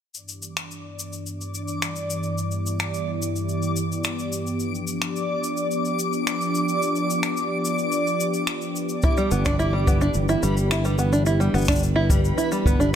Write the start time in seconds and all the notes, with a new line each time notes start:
0.14 G2 E3 B3 D4 G4 D5 D6, cabasa
0.28 cabasa
0.42 cabasa
0.57 finger snap, cabasa
0.71 cabasa
0.99 cabasa
1.13 cabasa
1.26 cabasa
1.41 cabasa
1.54 cabasa
1.68 cabasa
1.82 finger snap, cabasa
1.96 cabasa
2.10 cabasa
2.23 cabasa
2.37 E4, cabasa
2.51 cabasa
2.66 cabasa
2.80 finger snap, cabasa
2.94 cabasa
3.22 cabasa
3.36 cabasa
3.49 cabasa
3.62 cabasa
3.76 cabasa
3.92 cabasa
4.04 finger snap, cabasa
4.19 cabasa
4.32 cabasa
4.47 cabasa
4.59 F3 D4, cabasa
4.75 cabasa
4.87 cabasa
5.02 finger snap, cabasa
5.16 cabasa
5.44 cabasa
5.57 cabasa
5.71 cabasa
5.85 cabasa
5.99 cabasa
6.13 cabasa
6.27 finger snap, cabasa
6.41 cabasa
6.55 cabasa
6.68 cabasa
6.82 cabasa
6.95 cabasa
7.10 cabasa
7.23 finger snap, cabasa
7.37 cabasa
7.65 cabasa
7.78 cabasa
7.92 cabasa
8.07 cabasa
8.20 cabasa
8.34 cabasa
8.47 finger snap, cabasa
8.61 cabasa
8.76 cabasa
8.89 cabasa
9.02 E3 B3 D4 E4 G4 B4 B5, kick, cabasa
9.17 G3, cabasa
9.31 G1 B3, cabasa
9.45 D4, finger snap, kick, cabasa
9.59 E4, cabasa
9.73 G3
9.87 B3, kick, cabasa
10.01 D4, cabasa
10.14 G1, cabasa
10.29 E4, cabasa
10.43 G1 G3, cabasa
10.57 cabasa
10.71 E4, finger snap, cabasa
10.85 G3, cabasa
10.98 B3, cabasa
11.13 D4, cabasa
11.26 E4, cabasa
11.40 G3, cabasa
11.54 G1 B3, cabasa
11.58 cabasa
11.61 cabasa
11.65 D4, finger snap, cabasa
11.68 kick, cabasa
11.72 cabasa
11.75 cabasa
11.78 cabasa
11.83 cabasa
11.96 E4
12.10 G3, kick, cabasa
12.25 cabasa
12.38 E4, cabasa
12.52 G3, cabasa
12.65 G1 B3, kick, cabasa
12.79 G1 D4, cabasa